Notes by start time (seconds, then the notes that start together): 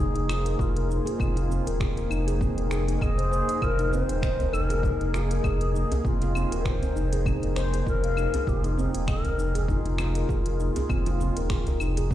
Already playing: A#3 D#4 G#4 C5
0.00 D#4, cabasa
0.15 F1 D#4, closed hi-hat
0.29 F4, finger snap, cabasa, claves
0.46 A#4, closed hi-hat, cabasa
0.59 F1 F4 G#4, kick, cabasa
0.76 A#4, closed hi-hat
0.89 D#4 F4, cabasa
1.06 G#4, closed hi-hat, cabasa
1.19 F1 C4, kick, cabasa, claves
1.36 F4, closed hi-hat, cabasa
1.50 C4, cabasa
1.67 D#1 A#4, closed hi-hat, cabasa
1.80 G#4, finger snap, kick, cabasa
1.97 A#4, closed hi-hat, cabasa
2.10 F1 D#4, cabasa, claves
2.28 G#4, closed hi-hat, cabasa
2.41 C4, kick, cabasa
2.57 F1 A#4, closed hi-hat
2.71 G#4, finger snap, cabasa
2.88 D#4, closed hi-hat, cabasa
2.96 A#4
3.01 F1 G#4 D#5, kick, cabasa, claves
3.18 C5, closed hi-hat
3.32 C5, cabasa
3.49 D#5, closed hi-hat, cabasa
3.62 F1 F4 A#4, kick, cabasa, claves
3.79 D#4, closed hi-hat, cabasa
3.92 C4 C5, djembe tone, cabasa
4.09 D#1 D#4, closed hi-hat, cabasa
4.22 D#5, finger snap, kick, djembe tone, cabasa
4.40 A#4, closed hi-hat, djembe bass, cabasa
4.53 F1 D#4 A#4, cabasa, claves
4.69 G#4, closed hi-hat, djembe tone, cabasa
4.83 D#4, kick, cabasa
5.00 F1 D#4, closed hi-hat
5.13 F4 G#4, finger snap, djembe slap, djembe tone, cabasa
5.31 A#4, closed hi-hat, cabasa
5.44 F1 G#4, kick, cabasa, claves
5.61 A#4, closed hi-hat
5.74 D#4, cabasa
5.91 G#4, closed hi-hat, djembe slap, djembe bass, cabasa
6.05 F1 C4 F4, kick, cabasa
6.22 F4, closed hi-hat, djembe slap, cabasa
6.35 C4, djembe tone, cabasa, claves
6.51 D#1 A#4, closed hi-hat, cabasa
6.65 G#4 C5, finger snap, kick, djembe tone, cabasa
6.83 A#4, closed hi-hat, djembe bass, cabasa
6.95 F1 D#4, cabasa
7.12 G#4, closed hi-hat, djembe tone, cabasa
7.26 C4, kick, cabasa, claves
7.43 F1 A#4, closed hi-hat
7.56 C5, finger snap, djembe tone, cabasa
7.74 G#4, closed hi-hat, cabasa
7.87 F1 F4 A#4, kick, cabasa
8.04 F5, closed hi-hat, djembe slap
8.17 D#4, cabasa, claves
8.34 G#4, closed hi-hat, djembe slap, djembe bass, cabasa
8.47 F1 F4 G4, kick, cabasa
8.59 G#4
8.64 D#4, closed hi-hat, cabasa
8.78 C4, djembe tone, cabasa
8.94 D#1 D#4, closed hi-hat, cabasa
9.08 A#4 D#5, finger snap, kick, djembe tone, cabasa, claves
9.25 A#4, closed hi-hat, djembe bass, cabasa
9.37 F1 D#4, cabasa
9.55 G#4, closed hi-hat, djembe tone, cabasa
9.68 D#4 F4, kick, cabasa
9.85 F1 D#4, closed hi-hat
9.98 F4, finger snap, djembe slap, djembe tone, cabasa, claves
10.15 A#4, closed hi-hat, cabasa
10.29 F1 G#4, kick, cabasa
10.46 A#4, closed hi-hat
10.60 D#4, cabasa
10.76 G#4, closed hi-hat, djembe slap, djembe bass, cabasa
10.90 F1 C4, kick, cabasa, claves
11.06 F4, closed hi-hat, djembe slap, cabasa
11.20 C4, djembe tone, cabasa
11.36 D#1 A#4, closed hi-hat, cabasa
11.50 G#4, finger snap, kick, djembe tone, cabasa
11.67 A#4, closed hi-hat, djembe slap, djembe bass, cabasa
11.80 F1 D#4, cabasa, claves
11.97 G#4, closed hi-hat, djembe tone, cabasa
12.11 C4, kick